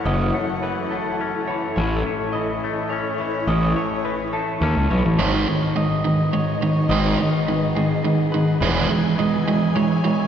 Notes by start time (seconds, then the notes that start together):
Already playing: E3 A3 C#4 E4 A4 C#5 F#5
0.05 F#1 F#2 D#5
0.34 A3 C#5
0.63 E3 B4
0.90 A3 A4
1.21 C#4
1.47 E3 C#5
1.76 A1 A2 C#4 C#5
2.06 A3
2.33 E3 D#5
2.64 A3
2.90 C#4 C#5
3.18 E3 C#5
3.47 A1 A2 D#5
3.76 A3 C#5
4.05 E3 B4
4.33 A3 A4
4.61 D#2 C#4
4.76 C#2
4.90 B1 E3 C#5
5.05 A1
5.18 G#1 G#2 D#3 G#3 B3 D#4 G#4 C#5 D#5
5.48 G#2 D#3
5.76 G#2 D#3 D#5
6.04 G#2 D#3
6.33 G#2 D#3 C#5
6.61 G#2 D#3 C#5
6.89 G#1 G#2 D#3 G#3 D#5
7.17 G#2 D#3 C#5
7.46 G#2 D#3 B4
7.75 G#2 D#3 G#4
8.04 G#2 D#3
8.32 G#2 D#3 B4
8.60 E1 E3 G#3 B3 E4 B4 G#5
8.90 E3 G#3
9.18 E3 G#3 D#5
9.48 E3 G#3
9.75 E3 G#3 C#5
10.04 E3 G#3 C#5